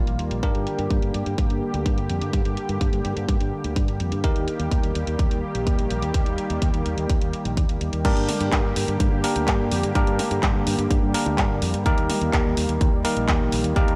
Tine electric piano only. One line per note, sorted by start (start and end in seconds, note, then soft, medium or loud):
0.00 0.40 A#3 medium
0.00 0.40 D#4 medium
0.00 0.40 G4 medium
0.00 0.40 A#4 medium
0.43 4.21 A#3 medium
0.43 4.21 D4 medium
0.43 4.21 G4 medium
0.43 4.21 A#4 medium
4.24 8.02 A#3 medium
4.24 8.02 D#4 medium
4.24 8.02 G4 medium
4.24 8.02 A#4 medium
8.05 9.21 A#3 medium
8.05 9.21 D4 medium
8.05 9.21 G4 medium
8.05 9.21 A#4 medium
9.24 9.93 A#3 medium
9.24 9.92 D4 medium
9.24 9.92 G4 medium
9.24 9.93 A#4 medium
9.95 11.12 A#3 medium
9.95 11.12 D4 medium
9.95 11.12 G4 medium
9.95 11.12 A#4 loud
11.14 11.83 A#3 medium
11.14 11.83 D4 medium
11.14 11.83 G4 medium
11.14 11.83 A#4 medium
11.86 13.02 A#3 medium
11.86 13.02 D#4 medium
11.86 13.02 G4 medium
11.86 13.02 A#4 medium
13.05 13.73 A#3 medium
13.05 13.73 D#4 medium
13.05 13.73 G4 medium
13.05 13.73 A#4 medium
13.76 13.96 A#3 medium
13.76 13.96 D#4 medium
13.76 13.96 G4 medium
13.76 13.96 A#4 medium